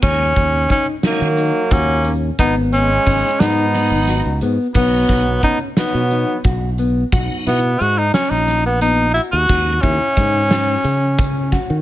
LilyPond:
<<
  \new Staff \with { instrumentName = "Clean electric guitar" } { \time 7/8 \key b \major \tempo 4 = 89 cis'4 dis'8 dis'8 dis'8 fis'8 cis'8 | b4 cis'8 dis'8 dis'8 fis'8 b8 | b4 cis'8 dis'8 dis'8 fis'8 b8 | fis'8 e'8 dis'8 cis'4 b8 fis'8 |
fis'8 e'8 dis'8 cis'4 cis'8 fis'8 | }
  \new Staff \with { instrumentName = "Tenor saxophone" } { \time 7/8 \key b \major cis'4 cis'8 ais4 cis'8 r8 | dis'8 cis'4 dis'4. r8 | b4 dis'8 b4 r4 | r8 b8 fis'16 dis'16 cis'16 dis'8 b16 dis'8 e'16 fis'16~ |
fis'8 cis'2~ cis'8 r8 | }
  \new Staff \with { instrumentName = "Tonewheel organ" } { \time 7/8 \key b \major <dis gis cis'>8 r4 <dis gis cis'>8 r4. | r4 <fis b dis'>8 r8 <fis b dis'>8 r4 | <fis b dis'>8 r2. | <fis b dis'>8 r2. |
<dis gis cis'>8 r2. | }
  \new Staff \with { instrumentName = "Flugelhorn" } { \time 7/8 \key b \major r4. fis4 ais8 r8 | b8 gis4 b4. r8 | fis4 b8 fis4 r4 | r2. r8 |
r2. r8 | }
  \new Staff \with { instrumentName = "Fingered electric bass" } { \clef bass \time 7/8 \key b \major dis,8 dis,8 r8. dis8 r16 dis,4 | gis,,4 gis,,16 r16 gis,8. gis,,8 cis,16 gis,16 r16 | b,,8 b,,8 r8. b,8 r16 b,,4 | b,,16 r16 b,8 gis,8 r16 ais,,4. dis,16 |
dis,8 dis,16 r16 gis,4 cis4~ cis16 dis16 | }
  \new DrumStaff \with { instrumentName = "Drums" } \drummode { \time 7/8 <hh bd>8 <hh bd>8 <hh bd sn>8 <hh sn>8 hh8 <hh bd>8 hh8 | <hh bd>8 hh8 <hh bd>8 <hh sn>8 <hh sn>8 <hh sn>8 hh8 | <hh bd>8 <hh bd sn>8 <hh bd>8 <hh sn>8 hh8 <hh bd>8 hh8 | <hh bd>8 <hh sn>8 hh8 <hh sn>8 <hh sn>8 hh8 hh8 |
<hh bd>8 <hh bd>8 <hh bd sn>8 <hh sn>8 hh8 <hh bd>8 <hh bd sn>8 | }
>>